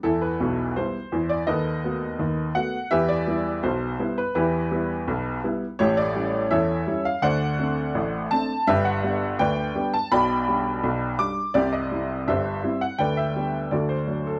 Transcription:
X:1
M:2/4
L:1/16
Q:1/4=83
K:G
V:1 name="Upright piano"
[EA] B3 c3 d | [AB^d]6 f2 | [GBe] d3 c3 B | [EGB]6 z2 |
[GA^c] d3 [Ace]3 =f | [cdf]6 a2 | [GBe] f3 [Bdg]3 a | [dgb]6 d'2 |
[Gd] _e3 [Gc=e]3 f | [Bdg] e3 [FAd] c2 A |]
V:2 name="Upright piano" clef=bass
[E,,E,]2 [B,,,B,,]2 [G,B,E]2 [E,,E,]2 | [^D,,^D,]2 [A,B,F]2 [D,,D,]2 [A,B,F]2 | [E,,E,]2 [G,B,E]2 [B,,,B,,]2 [G,B,E]2 | [E,,E,]2 [G,B,E]2 [B,,,B,,]2 [G,B,E]2 |
[A,,,A,,]2 [G,^CE]2 [E,,E,]2 [G,CE]2 | [D,,D,]2 [A,CD]2 [A,,,A,,]2 [A,CD]2 | [G,,,G,,]2 [G,B,D]2 [D,,D,]2 [G,B,D]2 | [B,,,B,,]2 [G,D]2 [B,,,B,,]2 [G,D]2 |
[C,,C,]2 [G,CE]2 [G,,,G,,]2 [G,CE]2 | [D,,D,]2 [G,B,D]2 [D,,D,]2 [F,A,D]2 |]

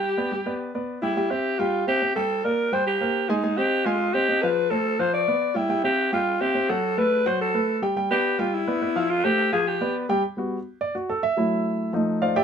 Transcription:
X:1
M:4/4
L:1/8
Q:1/4=212
K:G
V:1 name="Grand piano"
[G,Gg] [B,Bd] [G,Gg] [B,Bd]2 [B,Bd]2 [G,Gg] | [K:C] [G,Gg] [Cce]2 [G,Gg]2 [Cce] [Cce] [G,Gg]- | [G,Gg] [_B,_Bd]2 [G,Gg]2 [B,Bc]2 [_A,_A_a] | [_A,_A_a] [Cc_e]2 [A,Aa]2 [Cce] [Ce] [F,Ff]- |
[F,Ff] [A,Ac]2 [F,Ff]2 [B,Bd]2 [G,Gg] | [G,Gg] [Cce]2 [G,Gg]2 [Cce] [Cce] [^F,^F^f]- | [^F,^F^f] [A,AB]2 [F,Ff]2 [A,AB]2 [G,Gg] | [G,Gg] [B,Bd]2 [G,Gg]2 [B,Bd] [B,Bd] [F,Ff]- |
[F,Ff] [A,Ac]2 [F,Ff]2 [B,Bd]2 [G,Gg] | [K:G] z4 d F A e- | e4 z2 [=Fcd=f] [Gdeg] |]
V:2 name="Grand piano"
z8 | [K:C] z8 | z8 | z8 |
z8 | z8 | z8 | z8 |
z8 | [K:G] z [G,B,F] z6 | [F,A,E]4 [=F,A,_E]3 z |]
V:3 name="Alto saxophone"
G6 z E- | [K:C] E G2 F2 G2 A- | A _B2 c G3 _E- | _E G2 F2 G2 B- |
B A2 c d3 E- | E G2 F2 G2 A- | A B2 c A3 z | z G2 F E4 |
F G2 _A G2 z2 | [K:G] z8 | z8 |]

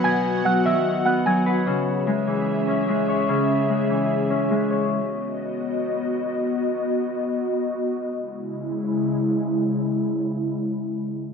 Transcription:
X:1
M:4/4
L:1/8
Q:1/4=148
K:C#m
V:1 name="Synth bell"
[gg']2 [ff'] [ee']2 [ff'] [gg']2 | z8 | z8 | z8 |
z8 | z8 | z8 |]
V:2 name="Analog synth pad"
[B,Ff]8 | [CGe]8- | [CGe]8 | [B,Fd]8- |
[B,Fd]8 | [C,G,E]8- | [C,G,E]8 |]
V:3 name="Harp" clef=bass
[B,,F,B,B]2 F, D,2 B, F, B | C,2 G, E,2 C G, c | C,2 G, E,2 C G, c | z8 |
z8 | z8 | z8 |]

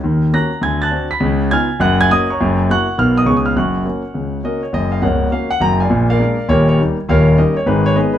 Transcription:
X:1
M:4/4
L:1/16
Q:"Swing" 1/4=205
K:F#
V:1 name="Grand piano"
z4 [af'a']4 [gg']2 [=af'=a']4 [bb']2 | z4 [ge'g']4 [ff']2 [gg']2 [dd']2 [cac']2- | [cac']4 [fc'f']4 [ee']2 [dd']2 c' d' [ee']2 | [fc'f']12 [Ad]2 c2 |
d2 e2 [Acf]4 e2 f2 a2 [=deg]2- | [=deg]2 [Ade]6 [=GAc]2 c2 z4 | [Ace]4 [=GAd]2 c2 [D^GB]2 c2 [GBd]2 B2 |]
V:2 name="Grand piano"
[D,,D,]4 [A,CF]4 [=D,,=D,]4 [=C=DF]4 | [C,,C,]4 [B,DE]4 [F,,,F,,]4 [A,CF]4 | [F,,,F,,]4 [A,=EF]4 [B,,,B,,B,DA]4 [C,,C,B,DG]4 | [F,,,F,,]4 [A,CF]4 [C,,C,]4 [A,CF]4 |
[F,,,F,,]4 [C,,,C,,]4 [A,CF]4 [F,,,F,,]4 | [A,,,A,,]4 [G,A,=D]4 [^D,,,D,,]4 [=G,A,^D]4 | [D,,,D,,]4 [=G,CD]4 [^G,,,G,,]4 [^G,B,D]4 |]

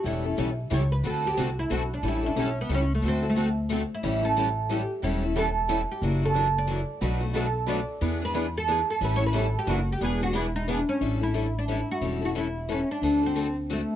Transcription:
X:1
M:3/4
L:1/8
Q:"Swing" 1/4=181
K:Amix
V:1 name="Oud"
E z3 c B | A G F E F D | E D C B, C A, | =C A, z3 E- |
E A3 G z | E2 A3 G | z A2 d3 | B z A2 d2- |
d B z A ^G A | (3B c B A G F G | ^G F E ^D [B,=D] C- | C E2 D E F- |
F F E2 C D- | D =C2 z A,2 |]
V:2 name="Steel-string acoustic guitar"
[E,G,CEA] [CEA] [E,G,CEA] z [E,G,CEA] z | [D,A,=CFA] [CFA] [D,A,CFA] z [D,A,CFA] z | [E,G,CEA] [CEA] [E,G,CEA] z [E,G,CEA] z | [D,A,=CFA] [CFA] [D,A,CFA] z [D,A,CFA] z |
[E,G,CEA] [CEA] [E,G,CEA] z [E,G,CEA] z | [E,G,CEA] [CEA] [E,G,CEA] z [E,G,CEA] z | [E,^A,DF] [A,DF] [E,A,DF] z [E,A,DF] z | [B,,F,A,DF] [A,DF] [B,,F,A,DF] z [B,,F,A,DF] z |
[E,B,D^G] [B,DG] [E,B,DG] z [E,B,DG] z | [E,G,CEA] [CEA] [E,G,CEA] z [E,^A,DF] z | [E,B,D^G] [B,DG] [E,B,DG] z [E,B,DG] z | [E,G,CEA] [CEA] [E,G,CEA] z [E,G,CEA] z |
[E,G,CEA] [CEA] [E,G,CEA] z [E,G,CEA] z | [D,A,=CFA] [CFA] [D,A,CFA] z [D,A,CFA] z |]
V:3 name="Steel-string acoustic guitar"
[E,G,CEA] z [E,G,CEA] z [E,G,CEA] z | [D,A,=CFA] z [D,A,CFA] z [D,A,CFA] z | [E,G,CEA] z [E,G,CEA] z [E,G,CEA] z | [D,A,=CFA] z [D,A,CFA] z [D,A,CFA] z |
[E,G,CEA] z [E,G,CEA] z [E,G,CEA] z | [E,G,CEA] z [E,G,CEA] z [E,G,CEA] z | [F,DE^A] z [F,DEA] z [F,DEA] z | [B,,F,A,DFB] z [B,,F,A,DFB] z [B,,F,A,DFB] z |
[E,B,D^GB] z [E,B,DGB] z [E,B,DGB] z | [E,G,CEA] z [E,G,CEA] z [F,DE^A] z | [E,B,D^GB] z [E,B,DGB] z [E,B,DGB] z | z6 |
z6 | z6 |]
V:4 name="Upright bass" clef=bass
E,,,2 B,,,2 C,,2 | D,,2 =C,,2 B,,,2 | A,,,2 B,,,2 C,,2 | D,,6 |
A,,,6 | E,,,6 | F,,,6 | B,,,6 |
E,,6 | A,,,4 F,,,2 | E,,,6 | A,,,6 |
E,,,6 | D,,6 |]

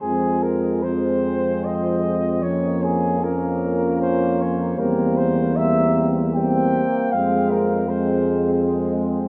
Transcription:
X:1
M:3/4
L:1/8
Q:1/4=77
K:Fm
V:1 name="Cornet"
A B c2 e2 | d A B2 c d | B c =e z g2 | f B c2 z2 |]
V:2 name="French horn section"
C2 C4 | D2 D4 | C2 C2 C2 | C2 C4 |]
V:3 name="Trombone section"
A,2 A,4 | B,2 B,4 | B,2 B,2 B,2 | A,2 A,4 |]
V:4 name="Euphonium" clef=bass
F,2 F,4 | F,2 F,4 | G,2 G,2 G, z | A,2 A,4 |]
V:5 name="Tuba" clef=bass
F,,6- | F,,6 | =E,,4- E,, z | F,,6 |]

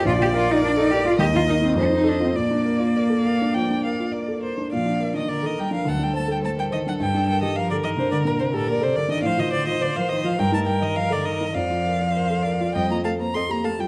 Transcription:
X:1
M:4/4
L:1/16
Q:1/4=104
K:Bb
V:1 name="Violin"
d8 e4 c4 | d12- d2 z2 | f3 e d e g f _g =g a g a g e _g | g2 g e f d e c d B c A B c d e |
f e d e d f e f g a g e f d e2 | f8 g b a b c' b a g |]
V:2 name="Violin"
d4 d4 e4 e4 | d4 d2 f2 g2 f2 d2 c2 | d4 B4 A4 A4- | A4 B8 d4 |
c8 B8 | d4 c2 d2 e2 f2 e2 f2 |]
V:3 name="Grand piano"
B,,, F B d B A B F E,, E B E F,, E A F | B,, D B F B A B D F, D B F B A B D | B,, D B D B A B D D,, D c A c B c D | G,, D B G B A B D D, D B G B A B D |
A,, F c F c B c F G,, E B e B A B E | F,, F B d B A B F F,, F A c A G A F |]
V:4 name="Cello" clef=bass
F G F E D E G F G F E C D E D C | B,12- B,2 z2 | F,3 E, D, E, G, F, _G, =G, A, G, A, G, E, _G, | G,2 G, E, F, D, E, C, D, B,, C, A,, B,, C, D, E, |
F, E, D, E, D, F, E, F, G, A, G, E, F, D, E,2 | F,8 G, B, A, B, C B, A, G, |]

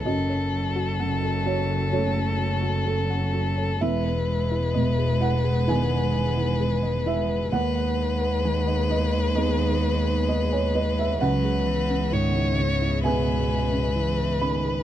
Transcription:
X:1
M:4/4
L:1/16
Q:1/4=65
K:E
V:1 name="Violin"
A16 | B16 | B16 | B4 c4 B8 |]
V:2 name="Felt piano"
d6 c2 c4 A4 | e6 f2 g6 e2 | f6 d2 d4 d c d e | f8 g6 b2 |]
V:3 name="Felt piano"
F,,4 C,4 [A,CA]8 | E,,4 B,,4 [D,B,G]8 | D,,4 D,4 [B,DG]8 | C,,4 G,,4 [B,Ge]8 |]
V:4 name="Synth pluck"
F c z F f A F A F z2 F A f F c | E B z E d G E G E z2 E G d E B | B f z B g d B d B z2 B d g B f | C G z C B E C E C z2 C E B C G |]
V:5 name="String section"
[CFA]16 | [B,GB]16 | [B,GB]16 | [B,Ge]16 |]
V:6 name="Cello" clef=bass
F,16 | G,16 | G,16 | F,2 E,2 D,2 C,2 B,,4 E,2 D,2 |]
V:7 name="Double bass" clef=bass
F,,,16 | E,,,16 | D,,16 | C,,16 |]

